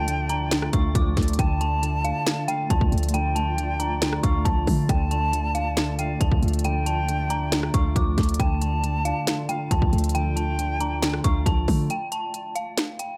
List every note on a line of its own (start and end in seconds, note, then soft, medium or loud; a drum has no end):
0.00 0.69 D2 loud
0.00 0.07 D3 loud
0.00 0.29 F3 medium
0.00 0.51 A3 medium
0.00 8.36 A3 medium
0.00 0.30 D4 medium
0.00 8.36 F4 medium
0.00 1.35 D5 medium
0.00 0.69 G5 loud
0.00 0.27 A5 medium
0.07 0.50 D3 medium
0.07 closed hi-hat medium
0.29 1.39 D4 medium
0.29 0.71 A#5 medium
0.29 closed hi-hat medium
0.51 0.72 D3 medium
0.51 finger snap loud
0.51 snare loud
0.51 closed hi-hat medium
0.62 cross-stick loud
0.73 0.94 D2 loud
0.73 1.37 D3 medium
0.73 0.94 F5 medium
0.73 0.92 C#6 medium
0.73 kick loud
0.73 closed hi-hat medium
0.95 1.16 D2 loud
0.95 1.39 F3 medium
0.95 1.36 D6 medium
0.95 kick loud
0.95 closed hi-hat medium
1.17 1.38 D2 loud
1.17 1.39 A3 medium
1.17 kick medium
1.17 snare medium
1.17 closed hi-hat soft
1.17 open hi-hat medium
1.23 closed hi-hat medium
1.28 closed hi-hat medium
1.33 closed hi-hat medium
1.39 2.12 D2 loud
1.39 1.59 D3 medium
1.39 11.86 D5 medium
1.39 1.58 G5 medium
1.39 2.44 A5 loud
1.39 kick loud
1.39 closed hi-hat medium
1.61 1.81 D3 medium
1.61 2.02 A5 medium
1.61 closed hi-hat medium
1.83 2.26 D3 medium
1.83 closed hi-hat medium
2.04 3.14 D4 medium
2.04 2.46 F5 medium
2.04 closed hi-hat medium
2.27 2.47 D3 medium
2.27 finger snap loud
2.27 snare loud
2.27 closed hi-hat medium
2.48 3.13 D3 medium
2.48 2.69 F5 medium
2.48 2.67 G5 loud
2.48 closed hi-hat medium
2.70 2.81 D2 loud
2.70 3.80 F3 medium
2.70 2.89 A5 loud
2.70 kick loud
2.70 closed hi-hat medium
2.81 2.92 D2 loud
2.81 kick loud
2.92 4.20 D2 loud
2.92 4.02 A3 medium
2.92 closed hi-hat soft
2.98 closed hi-hat medium
3.03 closed hi-hat medium
3.09 closed hi-hat medium
3.14 3.34 D3 loud
3.14 3.33 G5 loud
3.14 4.19 G5 loud
3.14 closed hi-hat medium
3.35 3.56 D3 medium
3.35 3.77 A5 medium
3.35 closed hi-hat medium
3.58 4.01 D3 medium
3.58 closed hi-hat medium
3.80 4.89 D4 medium
3.80 4.21 A#5 medium
3.80 closed hi-hat medium
4.02 4.22 D3 medium
4.02 finger snap medium
4.02 snare loud
4.02 closed hi-hat medium
4.13 cross-stick loud
4.23 4.45 D2 loud
4.23 4.88 D3 medium
4.23 4.44 F5 medium
4.23 4.42 C#6 medium
4.23 kick loud
4.23 closed hi-hat medium
4.45 4.66 C#2 loud
4.45 4.89 F3 medium
4.45 4.64 A5 medium
4.45 kick loud
4.45 closed hi-hat medium
4.67 4.88 D3 loud
4.67 4.89 A3 medium
4.67 kick medium
4.67 open hi-hat medium
4.89 6.17 D2 loud
4.89 5.10 D3 loud
4.89 5.08 G5 loud
4.89 5.95 A5 loud
4.89 kick loud
4.89 closed hi-hat medium
5.11 5.32 D3 medium
5.11 5.52 A5 medium
5.11 closed hi-hat medium
5.33 5.76 D3 medium
5.33 closed hi-hat medium
5.55 6.64 D4 medium
5.55 5.96 F5 medium
5.55 closed hi-hat medium
5.77 5.98 D3 loud
5.77 finger snap medium
5.77 snare loud
5.77 closed hi-hat medium
5.99 6.63 D3 medium
5.99 6.19 F5 medium
5.99 6.18 G5 medium
5.99 closed hi-hat medium
6.21 6.31 D2 loud
6.21 7.30 F3 medium
6.21 6.40 A5 medium
6.21 kick loud
6.21 closed hi-hat medium
6.32 6.42 D2 loud
6.32 kick loud
6.42 7.70 D2 loud
6.42 7.52 A3 medium
6.42 closed hi-hat soft
6.48 closed hi-hat medium
6.53 closed hi-hat medium
6.59 closed hi-hat medium
6.64 6.85 D3 medium
6.64 7.70 G5 loud
6.64 6.83 G5 loud
6.64 closed hi-hat medium
6.86 7.07 D3 medium
6.86 7.27 A5 medium
6.86 closed hi-hat medium
7.08 7.50 D3 medium
7.08 closed hi-hat medium
7.30 8.40 D4 medium
7.30 7.71 A#5 medium
7.30 closed hi-hat medium
7.52 7.72 D3 medium
7.52 finger snap medium
7.52 snare loud
7.52 closed hi-hat medium
7.63 cross-stick loud
7.74 7.95 D2 loud
7.74 8.38 D3 medium
7.74 7.95 F5 medium
7.74 7.93 C#6 medium
7.74 kick loud
7.74 closed hi-hat medium
7.96 8.17 D2 loud
7.96 8.40 F3 medium
7.96 8.37 D6 medium
7.96 kick loud
7.96 closed hi-hat medium
8.18 8.39 D2 loud
8.18 8.40 A3 medium
8.18 kick medium
8.18 snare medium
8.18 closed hi-hat soft
8.18 open hi-hat medium
8.23 closed hi-hat medium
8.29 closed hi-hat medium
8.34 closed hi-hat medium
8.39 9.13 D2 loud
8.39 8.60 D3 medium
8.39 11.87 A3 medium
8.39 11.87 F4 medium
8.39 8.58 G5 loud
8.39 9.45 A5 loud
8.39 kick loud
8.39 closed hi-hat medium
8.61 8.82 D3 medium
8.61 9.03 A5 medium
8.61 closed hi-hat medium
8.83 9.26 D3 medium
8.83 closed hi-hat medium
9.05 10.15 D4 medium
9.05 9.46 F5 medium
9.05 closed hi-hat medium
9.27 9.48 D3 medium
9.27 finger snap medium
9.27 snare loud
9.27 closed hi-hat medium
9.49 10.14 D3 medium
9.49 9.70 F5 medium
9.49 9.68 G5 loud
9.49 closed hi-hat medium
9.71 9.82 D2 loud
9.71 10.80 F3 medium
9.71 9.90 A5 medium
9.71 kick loud
9.71 closed hi-hat medium
9.82 9.92 D2 loud
9.82 kick loud
9.93 11.20 D2 loud
9.93 11.03 A3 medium
9.93 closed hi-hat soft
9.98 closed hi-hat medium
10.04 closed hi-hat medium
10.09 closed hi-hat medium
10.15 10.35 D3 medium
10.15 10.34 G5 loud
10.15 11.20 G5 loud
10.15 closed hi-hat medium
10.36 10.57 D3 medium
10.36 10.78 A5 medium
10.36 closed hi-hat medium
10.59 11.01 D3 medium
10.59 closed hi-hat medium
10.80 11.90 D4 medium
10.80 11.22 A#5 medium
10.80 closed hi-hat medium
11.02 11.23 D3 loud
11.02 finger snap medium
11.02 snare loud
11.02 closed hi-hat medium
11.13 cross-stick loud
11.24 11.45 D2 loud
11.24 11.90 D3 medium
11.24 11.45 F5 medium
11.24 11.43 C#6 medium
11.24 kick loud
11.24 closed hi-hat medium
11.46 11.67 C#2 loud
11.46 11.90 F3 medium
11.46 11.65 A5 medium
11.46 kick loud
11.46 closed hi-hat medium
11.68 11.89 D3 loud
11.68 11.90 A3 medium
11.68 kick medium
11.68 open hi-hat medium
11.90 12.09 G5 loud
11.90 closed hi-hat medium
12.12 12.53 A5 medium
12.12 closed hi-hat medium
12.34 closed hi-hat medium
12.55 12.97 F5 medium
12.55 closed hi-hat medium
12.78 finger snap medium
12.78 snare loud
12.78 closed hi-hat medium
12.99 13.17 G5 medium
12.99 closed hi-hat medium